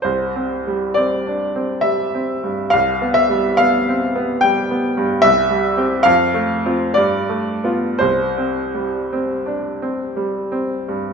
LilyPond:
<<
  \new Staff \with { instrumentName = "Grand piano" } { \time 3/4 \key c \major \tempo 4 = 67 c''4 d''4 e''4 | f''8 e''8 f''4 g''4 | e''4 f''4 d''4 | c''2 r4 | }
  \new Staff \with { instrumentName = "Grand piano" } { \time 3/4 \key c \major \tuplet 3/2 { c,8 c'8 g8 c'8 d'8 c'8 g8 c'8 g,8 } | \tuplet 3/2 { c,8 b8 g8 b8 c'8 b8 g8 b8 g,8 } | \tuplet 3/2 { c,8 g8 <c' g'>8 f,8 a8 <c' f'>8 g,8 a8 <b f'>8 } | \tuplet 3/2 { c,8 c'8 g8 c'8 d'8 c'8 g8 c'8 g,8 } | }
>>